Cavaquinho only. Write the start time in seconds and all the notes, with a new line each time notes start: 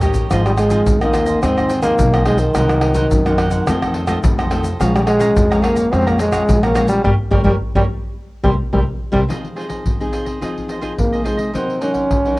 0.01 D#4 G4 C#5 D#5
0.30 F4 G#4 C5 D#5
0.57 F4 G#4 C5 D#5
0.70 F4 G#4 C5 D#5
1.02 G#4 C5 D#5
1.13 F4 G#4 C5 D#5
1.26 G#4 C5 D#5
1.42 F4 G#4 C5 D#5
1.57 G#4 C5 D#5
1.69 F4 G#4 C5 D#5
1.82 F4 G#4 C5 D#5
2.13 G#4 C5 D#5
2.26 F4 G#4 C5 D#5
2.55 D#4 A#4 C5 F#5
2.82 D#4 A#4 C5 F#5
2.95 D#4 A#4 C5 F#5
3.26 A#4 C5 F#5
3.38 D#4 A#4 C5 F#5
3.51 A#4 C5 F#5
3.67 F4 A4 C5 D#5
3.82 A4 C5 D#5
3.93 F4 A4 C5 D#5
4.07 F4 A4 C5 D#5
4.38 A4 C5 D#5
4.50 F4 A4 C5 D#5
4.80 G#4 C#5 F5 A#5
5.06 G#4 C#5 F5 A#5
5.19 G#4 C#5 F5 A#5
5.50 C#5 F5 A#5
5.62 G#4 C#5 F5 A#5
5.75 C#5 F5 A#5
5.91 G#4 C#5 F5 A#5
6.06 C#5 F5 A#5
6.19 G#4 C#5 F5 A#5
6.32 G#4 C#5 F5 A#5
6.63 C#5 F5 A#5
6.75 G#4 C#5 F5 A#5
7.05 G4 A#4 C#5
7.32 G4 A#4 C#5
7.44 G4 A#4 C#5
7.76 G4 A#4 C#5
8.44 A#4 C5 E5
8.73 A#4 C5 E5
9.13 A#4 C5 E5
9.29 F4 G#4 C5 D#5
9.56 F4 G#4 C5 D#5
9.69 G#4 C5 D#5
10.00 G#4 C5 D#5
10.12 F4 G#4 C5 D#5
10.25 G#4 C5 D#5
10.41 F4 G#4 C5 D#5
10.68 F4 G#4 C5 D#5
10.81 F4 G#4 C5 D#5
11.12 G#4 C5 D#5
11.24 F4 G#4 C5 D#5
11.37 G#4 C5 D#5
11.54 D#4 A#4 C5 F#5
11.81 D#4 A#4 C5 F#5
11.94 A#4 C5 F#5
12.25 A#4 C5 F#5